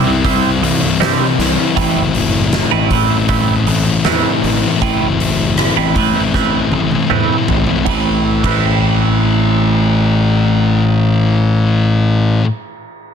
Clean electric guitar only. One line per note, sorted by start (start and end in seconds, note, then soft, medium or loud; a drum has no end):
0.00 0.11 G3 medium
0.00 0.11 C4 medium
0.00 0.11 E4 medium
0.00 0.11 C5 medium
0.25 0.49 G3 medium
0.25 0.49 C4 medium
0.25 0.49 E4 medium
0.25 0.50 C5 medium
0.63 muted clean electric guitar stroke soft
1.00 1.25 G3 medium
1.00 1.25 C4 medium
1.00 1.25 E4 medium
1.00 1.26 C5 medium
1.76 2.01 A3 medium
1.76 2.02 C4 medium
1.76 2.02 E4 medium
1.76 2.02 B4 medium
2.71 2.90 A3 medium
2.71 2.90 C4 medium
2.71 2.91 E4 medium
2.71 2.91 B4 medium
2.91 3.16 A3 medium
2.91 3.16 C4 medium
2.91 3.16 E4 medium
2.91 3.17 B4 medium
3.29 3.54 A3 medium
3.29 3.54 C4 medium
3.29 3.54 E4 medium
3.29 3.54 B4 medium
3.67 muted clean electric guitar stroke soft
4.05 4.30 A3 medium
4.05 4.30 C4 medium
4.05 4.31 E4 medium
4.05 4.31 B4 medium
4.82 5.07 A3 medium
4.82 5.07 C4 medium
4.82 5.07 E4 medium
4.82 5.07 B4 medium
5.77 5.95 A3 medium
5.77 5.96 C4 medium
5.77 5.96 E4 medium
5.77 5.96 B4 medium
5.96 6.21 A3 medium
5.96 6.21 C4 medium
5.96 6.22 E4 medium
5.96 6.22 B4 medium
6.35 6.59 A3 medium
6.35 6.59 C4 medium
6.35 6.60 E4 medium
6.35 6.60 B4 medium
6.73 muted clean electric guitar stroke soft
7.10 7.35 A3 medium
7.10 7.35 C4 medium
7.10 7.36 E4 medium
7.10 7.36 B4 medium
7.85 8.42 A2 medium
7.85 8.43 E3 medium
7.85 8.44 A3 medium
7.85 8.44 C4 medium
7.85 8.45 E4 medium
7.89 8.45 B4 medium
8.42 12.42 A2 medium
8.42 12.42 E3 medium
8.42 12.43 A3 medium
8.42 12.43 C4 medium
8.42 12.43 E4 medium
8.42 12.44 B4 medium